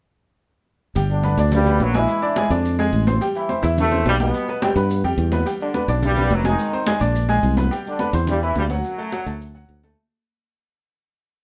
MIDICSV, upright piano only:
0, 0, Header, 1, 2, 480
1, 0, Start_track
1, 0, Key_signature, 1, "major"
1, 0, Tempo, 282087
1, 1625, Time_signature, 4, 2, 24, 8
1, 19449, End_track
2, 0, Start_track
2, 0, Title_t, "Upright piano"
2, 0, Program_c, 0, 0
2, 1622, Note_on_c, 0, 55, 68
2, 1632, Note_on_c, 0, 67, 74
2, 1639, Note_on_c, 0, 79, 72
2, 2018, Note_off_c, 0, 55, 0
2, 2024, Note_off_c, 0, 67, 0
2, 2028, Note_off_c, 0, 79, 0
2, 2103, Note_on_c, 0, 59, 71
2, 2107, Note_on_c, 0, 71, 62
2, 2112, Note_on_c, 0, 83, 61
2, 2302, Note_off_c, 0, 59, 0
2, 2304, Note_off_c, 0, 71, 0
2, 2307, Note_off_c, 0, 83, 0
2, 2356, Note_on_c, 0, 74, 77
2, 2359, Note_on_c, 0, 62, 70
2, 2364, Note_on_c, 0, 86, 68
2, 2747, Note_off_c, 0, 74, 0
2, 2749, Note_off_c, 0, 62, 0
2, 2752, Note_off_c, 0, 86, 0
2, 2833, Note_on_c, 0, 59, 73
2, 2836, Note_on_c, 0, 71, 64
2, 2836, Note_on_c, 0, 83, 71
2, 3225, Note_off_c, 0, 59, 0
2, 3227, Note_off_c, 0, 71, 0
2, 3227, Note_off_c, 0, 83, 0
2, 3299, Note_on_c, 0, 56, 72
2, 3308, Note_on_c, 0, 68, 75
2, 3310, Note_on_c, 0, 80, 80
2, 3697, Note_off_c, 0, 56, 0
2, 3702, Note_off_c, 0, 68, 0
2, 3704, Note_off_c, 0, 80, 0
2, 3781, Note_on_c, 0, 62, 76
2, 3782, Note_on_c, 0, 74, 76
2, 3793, Note_on_c, 0, 86, 81
2, 3982, Note_off_c, 0, 62, 0
2, 3982, Note_off_c, 0, 74, 0
2, 3988, Note_off_c, 0, 86, 0
2, 4029, Note_on_c, 0, 56, 67
2, 4036, Note_on_c, 0, 68, 75
2, 4042, Note_on_c, 0, 80, 84
2, 4226, Note_off_c, 0, 56, 0
2, 4230, Note_off_c, 0, 68, 0
2, 4234, Note_off_c, 0, 80, 0
2, 4260, Note_on_c, 0, 62, 76
2, 4264, Note_on_c, 0, 74, 71
2, 4272, Note_on_c, 0, 86, 71
2, 4657, Note_off_c, 0, 62, 0
2, 4660, Note_off_c, 0, 74, 0
2, 4665, Note_off_c, 0, 86, 0
2, 4745, Note_on_c, 0, 56, 86
2, 4752, Note_on_c, 0, 68, 83
2, 4759, Note_on_c, 0, 80, 81
2, 5140, Note_off_c, 0, 56, 0
2, 5144, Note_off_c, 0, 68, 0
2, 5148, Note_off_c, 0, 80, 0
2, 5223, Note_on_c, 0, 60, 67
2, 5232, Note_on_c, 0, 72, 75
2, 5238, Note_on_c, 0, 84, 60
2, 5422, Note_off_c, 0, 60, 0
2, 5428, Note_off_c, 0, 72, 0
2, 5431, Note_off_c, 0, 84, 0
2, 5462, Note_on_c, 0, 55, 70
2, 5466, Note_on_c, 0, 67, 70
2, 5473, Note_on_c, 0, 79, 67
2, 5858, Note_off_c, 0, 55, 0
2, 5860, Note_off_c, 0, 67, 0
2, 5864, Note_off_c, 0, 79, 0
2, 5938, Note_on_c, 0, 60, 72
2, 5942, Note_on_c, 0, 72, 64
2, 5949, Note_on_c, 0, 84, 66
2, 6138, Note_off_c, 0, 60, 0
2, 6141, Note_off_c, 0, 72, 0
2, 6145, Note_off_c, 0, 84, 0
2, 6167, Note_on_c, 0, 64, 76
2, 6172, Note_on_c, 0, 76, 68
2, 6174, Note_on_c, 0, 88, 80
2, 6568, Note_off_c, 0, 64, 0
2, 6571, Note_off_c, 0, 76, 0
2, 6572, Note_off_c, 0, 88, 0
2, 6653, Note_on_c, 0, 60, 71
2, 6656, Note_on_c, 0, 72, 71
2, 6669, Note_on_c, 0, 84, 67
2, 7051, Note_off_c, 0, 60, 0
2, 7052, Note_off_c, 0, 72, 0
2, 7060, Note_off_c, 0, 84, 0
2, 7141, Note_on_c, 0, 55, 86
2, 7146, Note_on_c, 0, 67, 75
2, 7155, Note_on_c, 0, 79, 80
2, 7535, Note_off_c, 0, 55, 0
2, 7538, Note_off_c, 0, 67, 0
2, 7543, Note_off_c, 0, 79, 0
2, 7628, Note_on_c, 0, 59, 72
2, 7642, Note_on_c, 0, 71, 81
2, 7642, Note_on_c, 0, 83, 74
2, 7822, Note_off_c, 0, 59, 0
2, 7830, Note_off_c, 0, 71, 0
2, 7830, Note_off_c, 0, 83, 0
2, 7873, Note_on_c, 0, 55, 80
2, 7881, Note_on_c, 0, 67, 74
2, 7885, Note_on_c, 0, 79, 83
2, 8065, Note_off_c, 0, 55, 0
2, 8070, Note_off_c, 0, 67, 0
2, 8072, Note_off_c, 0, 79, 0
2, 8102, Note_on_c, 0, 59, 68
2, 8109, Note_on_c, 0, 71, 69
2, 8109, Note_on_c, 0, 83, 71
2, 8494, Note_off_c, 0, 59, 0
2, 8498, Note_off_c, 0, 71, 0
2, 8498, Note_off_c, 0, 83, 0
2, 8578, Note_on_c, 0, 55, 86
2, 8583, Note_on_c, 0, 67, 81
2, 8587, Note_on_c, 0, 79, 71
2, 8971, Note_off_c, 0, 55, 0
2, 8974, Note_off_c, 0, 67, 0
2, 8976, Note_off_c, 0, 79, 0
2, 9054, Note_on_c, 0, 59, 72
2, 9059, Note_on_c, 0, 71, 66
2, 9066, Note_on_c, 0, 83, 69
2, 9252, Note_off_c, 0, 59, 0
2, 9255, Note_off_c, 0, 71, 0
2, 9259, Note_off_c, 0, 83, 0
2, 9284, Note_on_c, 0, 55, 68
2, 9290, Note_on_c, 0, 67, 62
2, 9297, Note_on_c, 0, 79, 64
2, 9682, Note_off_c, 0, 55, 0
2, 9685, Note_off_c, 0, 67, 0
2, 9689, Note_off_c, 0, 79, 0
2, 9771, Note_on_c, 0, 59, 67
2, 9777, Note_on_c, 0, 71, 65
2, 9783, Note_on_c, 0, 83, 61
2, 9969, Note_off_c, 0, 59, 0
2, 9973, Note_off_c, 0, 71, 0
2, 9976, Note_off_c, 0, 83, 0
2, 10012, Note_on_c, 0, 62, 70
2, 10012, Note_on_c, 0, 74, 70
2, 10019, Note_on_c, 0, 86, 78
2, 10406, Note_off_c, 0, 62, 0
2, 10406, Note_off_c, 0, 74, 0
2, 10410, Note_off_c, 0, 86, 0
2, 10502, Note_on_c, 0, 59, 64
2, 10506, Note_on_c, 0, 71, 72
2, 10513, Note_on_c, 0, 83, 67
2, 10891, Note_off_c, 0, 59, 0
2, 10893, Note_off_c, 0, 71, 0
2, 10898, Note_off_c, 0, 83, 0
2, 10970, Note_on_c, 0, 56, 73
2, 10975, Note_on_c, 0, 68, 72
2, 10986, Note_on_c, 0, 80, 74
2, 11364, Note_off_c, 0, 56, 0
2, 11367, Note_off_c, 0, 68, 0
2, 11373, Note_off_c, 0, 80, 0
2, 11453, Note_on_c, 0, 60, 80
2, 11459, Note_on_c, 0, 72, 83
2, 11460, Note_on_c, 0, 84, 75
2, 11649, Note_off_c, 0, 60, 0
2, 11653, Note_off_c, 0, 72, 0
2, 11653, Note_off_c, 0, 84, 0
2, 11688, Note_on_c, 0, 56, 82
2, 11690, Note_on_c, 0, 68, 79
2, 11696, Note_on_c, 0, 80, 81
2, 11886, Note_off_c, 0, 56, 0
2, 11887, Note_off_c, 0, 68, 0
2, 11891, Note_off_c, 0, 80, 0
2, 11910, Note_on_c, 0, 62, 78
2, 11919, Note_on_c, 0, 74, 68
2, 11926, Note_on_c, 0, 86, 76
2, 12312, Note_off_c, 0, 62, 0
2, 12317, Note_off_c, 0, 74, 0
2, 12321, Note_off_c, 0, 86, 0
2, 12400, Note_on_c, 0, 56, 85
2, 12404, Note_on_c, 0, 68, 80
2, 12412, Note_on_c, 0, 80, 86
2, 12798, Note_off_c, 0, 56, 0
2, 12800, Note_off_c, 0, 68, 0
2, 12805, Note_off_c, 0, 80, 0
2, 12882, Note_on_c, 0, 59, 70
2, 12886, Note_on_c, 0, 71, 69
2, 12890, Note_on_c, 0, 83, 67
2, 13083, Note_off_c, 0, 59, 0
2, 13085, Note_off_c, 0, 71, 0
2, 13088, Note_off_c, 0, 83, 0
2, 13120, Note_on_c, 0, 55, 73
2, 13121, Note_on_c, 0, 67, 78
2, 13124, Note_on_c, 0, 79, 69
2, 13518, Note_off_c, 0, 55, 0
2, 13519, Note_off_c, 0, 67, 0
2, 13521, Note_off_c, 0, 79, 0
2, 13605, Note_on_c, 0, 59, 69
2, 13609, Note_on_c, 0, 71, 71
2, 13609, Note_on_c, 0, 83, 66
2, 13805, Note_off_c, 0, 59, 0
2, 13807, Note_off_c, 0, 71, 0
2, 13807, Note_off_c, 0, 83, 0
2, 13842, Note_on_c, 0, 60, 65
2, 13848, Note_on_c, 0, 72, 76
2, 13854, Note_on_c, 0, 84, 70
2, 14240, Note_off_c, 0, 60, 0
2, 14244, Note_off_c, 0, 72, 0
2, 14247, Note_off_c, 0, 84, 0
2, 14334, Note_on_c, 0, 59, 66
2, 14342, Note_on_c, 0, 71, 72
2, 14345, Note_on_c, 0, 83, 65
2, 14727, Note_off_c, 0, 59, 0
2, 14732, Note_off_c, 0, 71, 0
2, 14734, Note_off_c, 0, 83, 0
2, 14802, Note_on_c, 0, 54, 83
2, 14810, Note_on_c, 0, 66, 73
2, 14814, Note_on_c, 0, 78, 79
2, 15201, Note_off_c, 0, 54, 0
2, 15205, Note_off_c, 0, 66, 0
2, 15208, Note_off_c, 0, 78, 0
2, 15281, Note_on_c, 0, 57, 79
2, 15295, Note_on_c, 0, 69, 76
2, 15298, Note_on_c, 0, 81, 76
2, 15483, Note_off_c, 0, 57, 0
2, 15491, Note_off_c, 0, 69, 0
2, 15493, Note_off_c, 0, 81, 0
2, 15524, Note_on_c, 0, 54, 77
2, 15531, Note_on_c, 0, 66, 68
2, 15533, Note_on_c, 0, 78, 77
2, 15725, Note_off_c, 0, 54, 0
2, 15729, Note_off_c, 0, 66, 0
2, 15730, Note_off_c, 0, 78, 0
2, 15762, Note_on_c, 0, 57, 73
2, 15764, Note_on_c, 0, 69, 73
2, 15772, Note_on_c, 0, 81, 68
2, 16161, Note_off_c, 0, 57, 0
2, 16163, Note_off_c, 0, 69, 0
2, 16167, Note_off_c, 0, 81, 0
2, 16241, Note_on_c, 0, 54, 80
2, 16247, Note_on_c, 0, 66, 74
2, 16259, Note_on_c, 0, 78, 78
2, 16641, Note_off_c, 0, 54, 0
2, 16644, Note_off_c, 0, 66, 0
2, 16652, Note_off_c, 0, 78, 0
2, 16736, Note_on_c, 0, 57, 68
2, 16740, Note_on_c, 0, 69, 66
2, 16743, Note_on_c, 0, 81, 63
2, 16933, Note_off_c, 0, 57, 0
2, 16936, Note_off_c, 0, 69, 0
2, 16937, Note_off_c, 0, 81, 0
2, 19449, End_track
0, 0, End_of_file